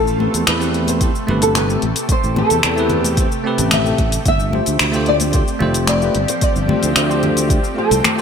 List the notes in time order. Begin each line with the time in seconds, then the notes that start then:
Already playing: A1 C3 A3 G4 A4
0.07 cabasa
0.17 A3 C4 G4 B4, high conga
0.34 E2, closed hi-hat, cabasa
0.47 E2 B4, finger snap, closed hi-hat, cabasa
0.58 A3 C4 G4 B4, cabasa
0.74 closed hi-hat
0.87 C5, closed hi-hat, high conga, cabasa
1.00 A3 C4 G4 C5, kick, closed hi-hat, cabasa
1.15 cabasa
1.27 G1 A3 C4 G4 B4, low conga
1.42 A4, closed hi-hat, cabasa
1.55 B4, finger snap, closed hi-hat, high conga, cabasa
1.68 A3 C4 G4 A4, cabasa
1.82 A1, closed hi-hat
1.96 closed hi-hat, cabasa
2.09 C5, kick, closed hi-hat, cabasa
2.24 A1, cabasa
2.35 A3 C4 G4 A4 B4, high conga, low conga
2.50 E2, closed hi-hat, cabasa
2.63 E2, finger snap, closed hi-hat, cabasa
2.76 A3 C4 G4 B4, cabasa
2.89 closed hi-hat, low conga
3.04 closed hi-hat, high conga, cabasa
3.16 A3 C4 G4 C5, kick, closed hi-hat, cabasa
3.32 cabasa
3.44 A3 C4 G4 B4
3.58 A1, closed hi-hat, cabasa
3.71 E5, finger snap, closed hi-hat, high conga, low conga, cabasa
3.84 A3 C4 G4 A4, cabasa
3.98 A1, kick, closed hi-hat
4.12 closed hi-hat, cabasa
4.25 G1 F3 C4 G4 E5, kick, closed hi-hat, cabasa
4.40 cabasa
4.51 A3 F4 G4 C5, high conga
4.66 D2, closed hi-hat, cabasa
4.79 D2, finger snap, closed hi-hat, cabasa
4.92 A3 F4 G4 C5, cabasa
5.06 D5, closed hi-hat
5.20 closed hi-hat, high conga, cabasa
5.32 A3 F4 G4 C5 D5, kick, closed hi-hat, cabasa
5.48 cabasa
5.59 F1 A3 F4 G4 C5, low conga
5.74 closed hi-hat, cabasa
5.87 D5, finger snap, closed hi-hat, high conga, cabasa
6.00 A3 F4 G4 B4, cabasa
6.15 G1, closed hi-hat
6.28 C5, closed hi-hat, cabasa
6.41 D5, kick, closed hi-hat, cabasa
6.56 G1, cabasa
6.67 A3 F4 G4 C5, high conga, low conga
6.83 D2, closed hi-hat, cabasa
6.96 D2, finger snap, closed hi-hat, cabasa
7.07 A3 F4 G4 C5, cabasa
7.23 closed hi-hat, low conga
7.37 closed hi-hat, high conga, cabasa
7.47 A3 F4 G4 D5, kick, closed hi-hat, cabasa
7.64 cabasa
7.75 A3 F4 G4 A4 C5
7.91 C2, closed hi-hat, cabasa
8.04 finger snap, closed hi-hat, high conga, low conga, cabasa
8.16 A3 F4 G4, cabasa